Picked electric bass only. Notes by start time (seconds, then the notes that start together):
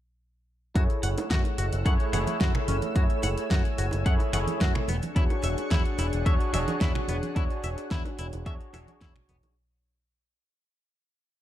0.76 F#2
1.03 F#1
1.17 muted picked electric bass stroke
1.31 F#2
1.58 F#1
1.73 F#1
1.86 F#2
2.13 F#1
2.28 muted picked electric bass stroke
2.41 F#2
2.68 F#1
2.96 F#2
3.23 F#1
3.38 muted picked electric bass stroke
3.51 F#2
3.78 F#1
3.93 F#1
4.06 F#2
4.33 F#1
4.61 F#2
4.88 E1
5.16 E2
5.43 E1
5.58 muted picked electric bass stroke
5.71 E2
5.98 E1
6.13 E1
6.26 E2
6.53 E1
6.81 E2
7.09 E1
7.36 E2
7.64 E1
7.78 muted picked electric bass stroke
7.91 E2
8.19 E1
8.33 E1
8.46 E2
8.61 muted picked electric bass stroke
8.74 E1
8.88 muted picked electric bass stroke
9.01 E2
9.29 E1